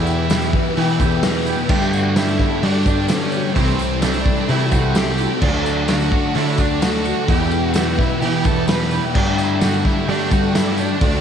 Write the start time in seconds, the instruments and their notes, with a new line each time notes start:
Already playing: distorted electric guitar E2 B2 E3, picked electric bass E2, clean electric guitar E3 B3 E4 G4, lead electric guitar E4, twelve-string acoustic guitar G4, string machine B4 E5 G5 E6
0.07 tambourine
0.29 distorted electric guitar E2 B2 E3, clean electric guitar E3 B3 E4 G4, twelve-string acoustic guitar B4, snare, open hi-hat, tambourine
0.42 tambourine
0.53 distorted electric guitar B2 E3, twelve-string acoustic guitar B4, kick
0.66 tambourine
0.76 distorted electric guitar E2 B2, clean electric guitar E3 B3 E4 G4, picked electric bass E3, twelve-string acoustic guitar G4, open hi-hat, tambourine
0.80 distorted electric guitar E3
1.00 picked electric bass E2, clean electric guitar B3 E4 G4, twelve-string acoustic guitar A4, kick, tambourine
1.12 tambourine
1.22 distorted electric guitar E2 B2 E3, twelve-string acoustic guitar B4, snare, open hi-hat, tambourine
1.45 clean electric guitar B3 E4 G4, twelve-string acoustic guitar G4, tambourine
1.58 tambourine
1.69 distorted electric guitar G2 D3, picked electric bass G2, clean electric guitar G3 A3 D4 G4, twelve-string acoustic guitar G4, lead electric guitar G4, string machine A4 D6, kick, crash
1.73 distorted electric guitar G3
1.82 tambourine
1.93 lead electric guitar F#4, tambourine
2.16 distorted electric guitar G2 D3 G3, clean electric guitar G3 A3 D4 G4, lead electric guitar E4, twelve-string acoustic guitar A4, snare, open hi-hat, tambourine
2.29 tambourine
2.39 distorted electric guitar D3 G3, twelve-string acoustic guitar A4, kick, snare
2.51 tambourine
2.63 distorted electric guitar G2 D3 G3, clean electric guitar G3 A3 D4 G4, picked electric bass G3, lead electric guitar D4, twelve-string acoustic guitar F#4, open hi-hat, tambourine
2.86 picked electric bass G2, clean electric guitar A3 D4 G4, lead electric guitar D4, twelve-string acoustic guitar G4, kick, tambourine
2.97 tambourine
3.08 distorted electric guitar G2 D3 G3, lead electric guitar C#4, twelve-string acoustic guitar A4, snare, open hi-hat, tambourine
3.32 clean electric guitar A3 D4 G4, twelve-string acoustic guitar F#4, tambourine
3.44 tambourine
3.54 picked electric bass C2, distorted electric guitar C3 G3, clean electric guitar C3 E3 A3 E4 G4, lead electric guitar C4, twelve-string acoustic guitar G4, string machine A4 E5 C6, kick, open hi-hat, tambourine
3.59 distorted electric guitar C4
3.67 tambourine
3.79 tambourine
4.01 distorted electric guitar C3 G3 C4, clean electric guitar E3 A3 E4 G4, lead electric guitar D4, twelve-string acoustic guitar A4, snare, open hi-hat, tambourine
4.14 tambourine
4.25 distorted electric guitar G3 C4, twelve-string acoustic guitar A4, kick
4.37 tambourine
4.48 distorted electric guitar C3 G3 C4, clean electric guitar C3 E3 A3 E4 G4, picked electric bass C3, lead electric guitar E4, twelve-string acoustic guitar F#4, open hi-hat, tambourine
4.59 tambourine
4.71 picked electric bass C2, clean electric guitar A3 E4 G4, lead electric guitar F#4, twelve-string acoustic guitar G4, kick, tambourine
4.95 distorted electric guitar C3 G3 C4, lead electric guitar G4, twelve-string acoustic guitar A4, snare, open hi-hat, tambourine
5.18 clean electric guitar A3 E4 G4, twelve-string acoustic guitar F#4, tambourine
5.41 picked electric bass D2, distorted electric guitar D3 A3 D4, clean electric guitar D3 F#3 A3 D4 F#4, lead electric guitar D4, twelve-string acoustic guitar F#4, string machine D5 F#5 D6, kick, crash, tambourine
5.53 tambourine
5.66 tambourine
5.88 distorted electric guitar D3 A3, clean electric guitar F#3 A3 D4 F#4, lead electric guitar F#4, twelve-string acoustic guitar A4, snare, open hi-hat, tambourine
5.92 distorted electric guitar D4
6.00 tambourine
6.12 distorted electric guitar A3 D4, twelve-string acoustic guitar A4, kick
6.34 clean electric guitar D3 F#3 A3 D4 F#4, distorted electric guitar D3 A3, picked electric bass D3, lead electric guitar E4, twelve-string acoustic guitar F#4, open hi-hat, tambourine
6.39 distorted electric guitar D4
6.58 picked electric bass D2, clean electric guitar A3 D4 F#4, lead electric guitar D4, twelve-string acoustic guitar G4, kick, tambourine
6.71 tambourine
6.80 distorted electric guitar D3 A3, lead electric guitar F#4, twelve-string acoustic guitar A4, snare, open hi-hat, tambourine
6.86 distorted electric guitar D4
6.94 snare, tambourine
7.05 clean electric guitar A3 D4 F#4, twelve-string acoustic guitar F#4, tambourine
7.28 distorted electric guitar E2 B2, picked electric bass E2, clean electric guitar E3 B3 E4 G4, twelve-string acoustic guitar G4, lead electric guitar G4, string machine B4 E5 G5 E6, kick, open hi-hat, tambourine
7.32 distorted electric guitar E3
7.41 tambourine
7.51 tambourine
7.74 distorted electric guitar E2 B2, clean electric guitar E3 B3 E4 G4, lead electric guitar F#4, twelve-string acoustic guitar B4, snare, open hi-hat, tambourine
7.78 distorted electric guitar E3
7.98 distorted electric guitar B2 E3, lead electric guitar E4, twelve-string acoustic guitar B4, kick, snare
8.09 tambourine
8.21 distorted electric guitar E2 B2, picked electric bass E3, clean electric guitar E3 B3 E4, lead electric guitar G4, twelve-string acoustic guitar G4, open hi-hat, tambourine
8.25 distorted electric guitar E3, clean electric guitar G4
8.44 picked electric bass E2, clean electric guitar E4 G4, lead electric guitar A4, twelve-string acoustic guitar A4, kick, tambourine
8.48 clean electric guitar B3
8.68 distorted electric guitar E2 B2 E3, lead electric guitar B4, twelve-string acoustic guitar B4, snare, open hi-hat, tambourine
8.81 snare
8.91 clean electric guitar B3 E4 G4, twelve-string acoustic guitar G4, tambourine
9.03 tambourine
9.14 distorted electric guitar G2 D3, picked electric bass G2, clean electric guitar G3 A3 D4 G4, lead electric guitar D4, twelve-string acoustic guitar G4, string machine A4 D5 G5 D6, kick, crash, tambourine
9.18 distorted electric guitar G3
9.26 tambourine
9.38 lead electric guitar E4, tambourine
9.61 distorted electric guitar G2 D3, clean electric guitar G3 A3 D4, lead electric guitar F#4, twelve-string acoustic guitar A4, snare, open hi-hat, tambourine
9.65 distorted electric guitar G3, clean electric guitar G4
9.74 tambourine
9.85 distorted electric guitar G3, lead electric guitar E4, twelve-string acoustic guitar A4, kick, snare
9.89 distorted electric guitar D3
9.98 tambourine
10.08 distorted electric guitar G2 D3 G3, clean electric guitar G3 A3 D4 G4, picked electric bass G3, lead electric guitar D4, twelve-string acoustic guitar F#4, open hi-hat, tambourine
10.31 picked electric bass G2, clean electric guitar A3 D4 G4, lead electric guitar F#4, twelve-string acoustic guitar G4, kick, tambourine
10.44 tambourine
10.54 distorted electric guitar G2 D3, lead electric guitar E4, twelve-string acoustic guitar A4, snare, open hi-hat, tambourine
10.59 distorted electric guitar G3
10.66 tambourine
10.78 clean electric guitar A3 D4 G4, lead electric guitar D4, twelve-string acoustic guitar F#4, tambourine
11.01 picked electric bass D2, clean electric guitar D3 A3 F#4, distorted electric guitar D3 A3, twelve-string acoustic guitar F#4, string machine F#5 C#6, kick, open hi-hat, tambourine
11.06 distorted electric guitar D4
11.12 tambourine